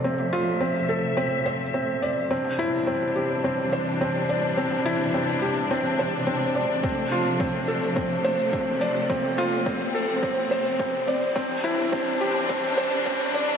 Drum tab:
SH |----------------|----------------|----------------|x-xxx-xxx-xxx-xx|
T2 |-o--------o-----|-o--------o-----|-o--------o-----|-o--------o-----|
BD |----------------|----------------|----------------|o---o---o---o---|

SH |x-xxx-xxx-xxx-xx|x-xxx-xxx-xxx-xx|
T2 |-o--------o-----|-o--------o-----|
BD |o---o---o---o---|o---o---o---o---|